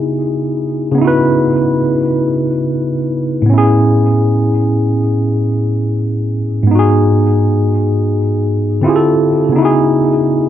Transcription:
Already playing: C#3 B3 D#4 E4 F#4 G#4
0.91 C#3 B3
0.98 D#4 E4
1.05 F#4 B4
3.42 A2
3.46 B3 C#4
3.54 E4
3.58 G#4
6.63 G#2
6.67 B3
6.71 D#4 F#4
6.79 G#4
8.81 D3 C4 E4
8.86 F4 G4 G#4
8.96 A4
9.49 C#3 B3
9.56 D#4 E4
9.62 F#4 G#4

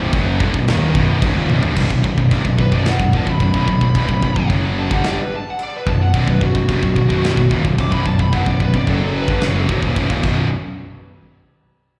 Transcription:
Already playing: C1 C2 G2 C3 B3 F#4 B4
0.13 F#1 F#2 C#3 F#3, kick, crash
0.40 G1 G2 D3, kick
0.54 B0 B1 F#2, kick
0.68 D#1 D#2 A#2 D#3, snare, crash
0.94 B0 B1 F#2 B2, kick
1.22 C1 C2 G2, kick, crash
1.36 D#1 D#2 A#2
1.50 B0 B1 F#2, high tom
1.63 C1 C2 G2, floor tom
1.76 B0 B1 F#2, kick, crash, china
1.90 B0 B1 F#2, kick
2.02 B0 B1 F#2, kick
2.17 B0 B1 F#2, kick
2.31 C1 C2 G2, kick, china
2.45 B0 B1 F#2, kick
2.58 B0 B1 F#2 B4, kick
2.72 B0 B1 F#2 B2 D5, kick
2.85 F#5, snare, china
2.99 B0 B1 F#2, kick
3.13 D#1 D#2 A#2, kick
3.17 A5
3.27 B0 B1 F#2 B5, kick
3.40 B0 B1 F#2 B5, kick, china
3.54 B0 B1 F#2, kick
3.67 B0 B1 F#2, kick
3.81 B0 B1 F#2, kick
3.95 C1 C2 G2, kick, china
4.09 B0 B1 F#2, kick
4.22 B0 B1 F#2, kick
4.35 B0 B1 F#2, kick
4.49 F#1 F#2 C#3 F#3, kick, china
4.79 A5
4.89 G1 G2 D3 G3, kick
4.93 F#5
5.04 snare, china
5.08 D5
5.22 B4
5.36 A5
5.50 F#5
5.59 china
5.63 D5
5.77 B4
5.86 B0 B1 F#2 A5, kick
6.02 F#5
6.13 B0 B1 F#2 D5, kick, china
6.27 B0 B1 F#2 B4, kick
6.41 B0 B1 F#2 F#4, kick
6.54 B0 B1 F#2, kick
6.68 C1 C2 G2, kick, china
6.82 B0 B1 F#2, kick
6.95 B0 B1 F#2, kick
7.09 B0 B1 F#2 B2, kick
7.24 snare, china
7.37 B0 B1 F#2, kick
7.49 D#1 D#2 A#2, kick
7.64 B0 B1 F#2, kick
7.78 B0 B1 F#2 D6, kick, china
7.90 B0 B1 F#2 B5, kick
8.05 B0 B1 F#2 A5, kick
8.19 B0 B1 F#2 B5, kick
8.33 C1 C2 G2 F#5, kick, china
8.46 B0 B1 F#2 D5, kick
8.60 B0 B1 F#2 B4, kick
8.73 B0 B1 F#2 D5, kick
8.87 F#1 F#2 C#3 F#3 A4, kick, china
9.17 B4
9.28 G1 G2 D3, kick
9.41 F#1 F#2 C#3 F#3, snare, china
9.69 B0 B1 F#2, kick
9.82 D#1 D#2 A#2, kick
9.96 B0 B1 F#2, kick, china
10.10 D#1 D#2 A#2, kick
10.23 B0 B1 F#2 B2, kick, crash

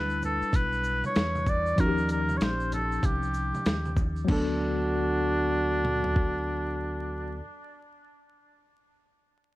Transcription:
Already playing: D2 G3 D4 E4 B4
0.10 shaker
0.22 A4, low conga, shaker
0.42 muted fingered electric bass stroke, shaker
0.53 B1 B4, kick, closed hi-hat, shaker
0.73 shaker
0.84 shaker
1.04 C#5, high conga, shaker
1.15 E2, snare, closed hi-hat, shaker
1.35 high conga, shaker
1.46 D5, kick, low conga, shaker
1.66 shaker
1.76 D#2 F3 C#4 D#4 A#4, kick, closed hi-hat, shaker
1.80 F#4
1.87 G4
1.98 shaker
2.09 A#4, closed hi-hat, shaker
2.29 high conga, shaker
2.37 A#1 C#5, closed hi-hat, shaker
2.42 C5, snare
2.60 shaker
2.72 A4, closed hi-hat, low conga, shaker
2.92 shaker
3.03 C2 G4, kick, closed hi-hat, shaker
3.23 shaker
3.34 shaker
3.55 high conga, shaker
3.65 D#2, snare, closed hi-hat, shaker
3.85 high conga, shaker
3.97 kick, low conga, shaker
4.16 shaker
4.25 F#3 B3 F#4, kick, crash, high conga
4.29 D2 D4 A4
5.85 mid tom
6.04 floor tom
6.16 kick

